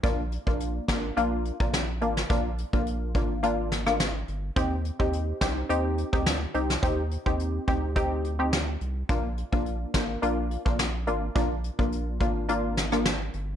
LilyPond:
<<
  \new Staff \with { instrumentName = "Synth stab" } { \time 4/4 \key bes \mixolydian \tempo 4 = 106 <bes d' f'>16 r8 <bes d' f'>8. <bes d' f'>8 <bes d' f'>8. <bes d' f'>16 r8 <bes d' f'>16 r16 | <bes d' f'>16 r8 <bes d' f'>8. <bes d' f'>8 <bes d' f'>8. <bes d' f'>16 r4 | <c' ees' g'>16 r8 <c' ees' g'>8. <c' ees' g'>8 <c' ees' g'>8. <c' ees' g'>16 r8 <c' ees' g'>16 r16 | <c' ees' g'>16 r8 <c' ees' g'>8. <c' ees' g'>8 <c' ees' g'>8. <c' ees' g'>16 r4 |
<bes d' f'>16 r8 <bes d' f'>8. <bes d' f'>8 <bes d' f'>8. <bes d' f'>16 r8 <bes d' f'>16 r16 | <bes d' f'>16 r8 <bes d' f'>8. <bes d' f'>8 <bes d' f'>8. <bes d' f'>16 r4 | }
  \new Staff \with { instrumentName = "Sub bass" } { \clef bass \time 4/4 \key bes \mixolydian bes,,8. bes,,8. aes,,8 bes,,8. bes,,8. aes,,8 | bes,,8. bes,,8. aes,,2 g,,8 | ees,8. ees,8. c,8 ees,8. d,8. c,8 | ees,8. ees,8. d,2 c,8 |
bes,,8. bes,,8. aes,,8 bes,,8. bes,,8. aes,,8 | bes,,8. bes,,8. aes,,2 g,,8 | }
  \new DrumStaff \with { instrumentName = "Drums" } \drummode { \time 4/4 <hh bd>8 hh16 bd16 hh8 <hh bd sn>8 hh8 hh16 bd16 <hh sn>8 hh16 sn16 | <hh bd>8 hh16 bd16 hh8 <hh bd>8 hh8 <hh sn>16 ss16 <hh sn>8 hh8 | <hh bd>8 hh16 bd16 hh8 <bd sn>8 hh8 hh16 bd16 <hh sn>8 hh16 sn16 | <hh bd>8 hh16 bd16 hh8 <hh bd>8 <hh bd>8 hh8 <hh sn>8 hh8 |
<hh bd>8 hh16 bd16 hh8 <bd sn>8 hh8 hh16 bd16 <hh sn>8 hh8 | <hh bd>8 hh16 bd16 hh8 <hh bd>8 hh8 <hh sn>16 ss16 <hh sn>8 hh8 | }
>>